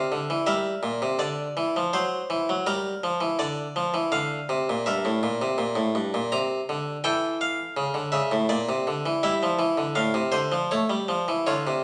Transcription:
Already playing: F4 F5
0.12 D3
0.30 E3
0.47 G3 A#4 E5
0.83 A#2
1.02 C3
1.19 D3 D5
1.57 E3
1.76 F3
1.93 F#3 C5
2.30 E3
2.49 F#3
2.67 G3 A#4
3.04 F3
3.21 E3
3.39 D3 D5
3.76 F3
3.94 E3
4.12 D3 F5
4.49 C3
4.69 A#2
4.86 G2 A#4 E5
5.05 A2
5.23 A#2
5.42 C3
5.58 A#2
5.75 A2
5.95 G2
6.14 A#2
6.32 C3 A#5
6.69 D3
7.04 E3 A4 G5
7.41 F5
7.77 C#3
7.94 D3
8.12 C#3 E5
8.31 A2
8.49 A#2 D5
8.69 C3
8.87 D3
9.06 E3
9.23 G3 E4 E5
9.43 F3
9.59 E3
9.78 D3
9.95 A2 F5
10.14 C3
10.32 D3 C5
10.52 F3
10.71 A3 C#5
10.90 G3
11.09 F3
11.28 E3
11.47 D3 F4 C#5
11.67 C3

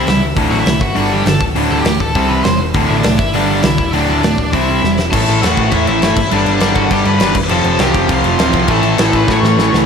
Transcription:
Already playing: E4 E5
0.07 C#2 C3 G3, snare, open hi-hat
0.36 D1 D2 A2 D3, kick, open hi-hat
0.51 A1 F#4 F#5
0.58 E4 E5
0.66 C2 D2 A2, snare, open hi-hat
0.81 G1 F#4 F#5, kick
0.95 G1 G2 D3 G3, open hi-hat
1.13 G4 G5
1.25 G1 G2 D3 A4 A5, snare, open hi-hat
1.40 D1, kick
1.55 D1 D2 A2 D3, open hi-hat
1.70 D1 A4 A5
1.77 G4 G5
1.84 D1 D2 A2, snare, open hi-hat
2.00 D1 A4 A5, kick
2.15 C2 C3 G3 C4, kick, open hi-hat
2.29 B4 B5
2.43 E1 C3 G3 C5 C6, snare, open hi-hat
2.74 D1 D2 A2 D3, kick, open hi-hat
2.89 A1 E4 E5
2.97 D4 D5
3.03 C2 D2 A2, snare, open hi-hat
3.18 G1 E4 E5, kick
3.33 G1 G2 D3 G3 D4 D5, open hi-hat
3.49 D4 D5
3.62 C2 G2 D3 E4 E5, snare, open hi-hat
3.78 D1, kick
3.93 D1 D2 A2 D3 D4 D5, open hi-hat
4.08 D1
4.23 D1 D2 A2, snare, open hi-hat
4.38 D1, kick
4.52 C2 C3 G3 C4 E4 E5, kick, open hi-hat
4.82 E1 C3 G3, snare
4.99 snare
5.11 A1 A2 E3 A3 A4 A5, kick, crash
5.28 A1, crash
5.42 E2 A2 E3 A3 F#4 F#5, snare, crash
5.57 A1, kick, crash
5.71 E2 A2 E3 A3 E4 E5, kick, crash
5.87 A1 E4 E5, crash
6.02 G1 A2 E3 A3, snare, crash
6.16 G1, kick, crash
6.31 G1 G2 D3 G3 D4 D5, crash
6.46 G1, crash
6.60 G1 G2 D3 G3, snare, crash
6.74 G1 F#4 F#5, kick, crash
6.91 G1 G2 D3 G3 G4 G5, kick, crash
7.05 G2 B4 B5, crash
7.20 G1 G2 D3 G3, snare, crash
7.34 F1, kick, crash
7.49 F1 F2 C3 F3 A4 A5, crash
7.64 F1, crash
7.79 C2 F2 C3 F3 G4 G5, snare, crash
7.94 F1, kick, crash
8.09 C2 F2 C3 F3 F4 F5, kick, crash
8.24 F1 F4 F5, crash
8.38 D1 F2 C3 F3, snare, crash
8.52 C2 F2 C3 F3, kick, crash
8.68 A1 A2 E3 A3 A4 A5, kick, crash
8.82 A1, crash
8.98 A1 A2 E3 A3, snare, crash
9.13 A1 B4 B5, kick, crash
9.28 A1 A2 E3 A3 C#5 C#6, kick, snare
9.43 A2 C#5 C#6, snare
9.57 A1 A2 E3 A3, snare
9.70 C#2 E3 A3
9.74 A2, snare

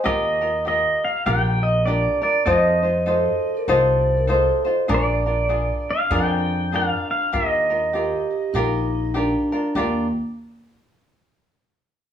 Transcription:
0.04 D#2 F4 G4 A#4 D#5
0.41 F4 A#4
0.65 F4 G4 A#4 D#5
1.05 F5
1.26 A#1 F4 G4 A#4 G5
1.63 D#5
1.86 D4 F4 G4 A#4 D5
2.21 D4 F4 A#4 D5
2.46 F2 D#4 F4 A4 C5 D#5
2.83 D#4 F4 C5
3.06 D#4 F4 A4 C5
3.57 A#4 D5
3.68 C2 D#4 F4 A4 C5
4.17 A#4
4.27 D#4 F4 A4 C5
4.65 D#4 F4 C5
4.88 A#1 D4 F4 G#4 A#4
4.94 D5
5.26 D4 F4 A#4
5.49 D4 F4 G#4 A#4
5.91 F5
6.10 F2 D4 F4 G#4 A#4
6.15 G5
6.72 D4 F4 G#4 A#4 F5
7.11 F5
7.32 D#2 F4 G4 A#4 D#5
7.70 F4 A#4
7.93 F4 G4 A#4
8.31 G4
8.53 A#1 D#4 F4 G4 A#4
9.14 D4 F4 G4 A#4
9.52 D4 F4 A#4
9.75 D#2 A#3 D4 F4 G4 A#4

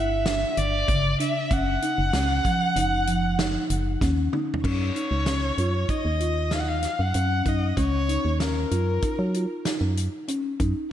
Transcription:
Already playing: G1 E4 E5
0.26 D4, snare, closed hi-hat
0.57 G1 D5, closed hi-hat
0.88 G1 C#3, kick, closed hi-hat
1.20 D4 E5, closed hi-hat
1.51 F#1 C#4 F#5, kick, closed hi-hat
1.82 D#4, closed hi-hat
1.98 F#1
2.13 C#2 C#4, snare, closed hi-hat
2.45 F3, kick, closed hi-hat
2.76 F#1 D#4, closed hi-hat
3.07 F3, closed hi-hat
3.38 D#4, snare, closed hi-hat
3.70 F#1, closed hi-hat
4.01 D#2 C#4, kick, snare, closed hi-hat
4.33 D#4, high tom
4.54 floor tom
4.64 F#2 C#4 C#5, kick, crash
4.95 D#4, closed hi-hat
5.11 C#2
5.26 C#4, snare, closed hi-hat
5.58 F#2 F4, closed hi-hat
5.89 D#4 D#5, kick, closed hi-hat
6.05 D#2
6.20 F4, closed hi-hat
6.51 D#4 F5, snare, closed hi-hat
6.59 F#5
6.68 F5
6.83 snare, closed hi-hat
6.99 F#2 F#5
7.14 F#2 C#4, closed hi-hat
7.45 F#2 D#4 D#5, kick, closed hi-hat
7.77 C#2 C#4 C#5, kick, closed hi-hat
8.09 D#4, closed hi-hat
8.25 D#2
8.40 C#4 A#4, snare, closed hi-hat
8.71 F#2 F4, closed hi-hat
9.02 D#4, kick, closed hi-hat
9.19 F#3
9.34 F4, closed hi-hat
9.65 D#4, snare, closed hi-hat
9.81 F#2
9.97 closed hi-hat
10.28 C#4, closed hi-hat
10.60 F#2 D#4, kick, closed hi-hat

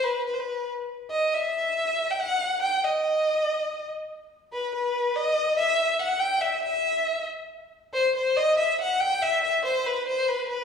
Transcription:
0.03 B4
0.27 B4
0.34 C5
0.40 B4
1.11 D#5
1.34 E5
2.11 G5
2.19 F#5
2.62 G5
2.84 D#5
4.53 B4
4.75 B4
5.16 D#5
5.57 E5
6.00 F#5
6.20 G5
6.41 E5
6.63 E5
7.94 C5
8.15 C5
8.37 D#5
8.58 E5
8.81 F#5
9.00 G5
9.22 E5
9.44 E5
9.65 C5
9.86 B4
10.08 C5
10.28 B4
10.49 B4

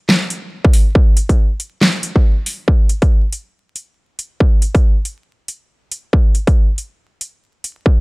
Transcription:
0.09 snare, clap
0.30 closed hi-hat
0.65 kick
0.73 open hi-hat
0.95 kick
1.17 closed hi-hat
1.29 kick, closed hi-hat
1.60 closed hi-hat
1.81 snare, clap
2.03 closed hi-hat
2.16 kick
2.46 open hi-hat
2.68 kick
2.89 closed hi-hat
3.02 kick, closed hi-hat
3.32 closed hi-hat
3.76 closed hi-hat
4.19 closed hi-hat
4.40 kick
4.62 closed hi-hat
4.75 kick, closed hi-hat
5.05 closed hi-hat
5.48 closed hi-hat
5.92 closed hi-hat
6.13 kick
6.35 closed hi-hat
6.47 kick, closed hi-hat
6.78 closed hi-hat
7.21 closed hi-hat
7.64 closed hi-hat
7.86 kick

